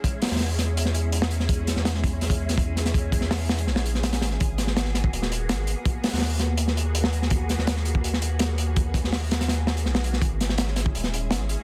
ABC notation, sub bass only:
X:1
M:4/4
L:1/16
Q:1/4=165
K:G#m
V:1 name="Sub bass" clef=bass
z3 E,,12- E,,- | E,,3 E,,12- E,,- | E,,3 E,,4- E,, A,,,6 G,,,2 | G,,,8 D,,,4 G,,,3 z |
z3 D,,12- D,,- | D,,3 D,,12- D,,- | D,,3 D,,8- D,, B,,,4 | G,,,8 D,,,4 G,,,3 z |]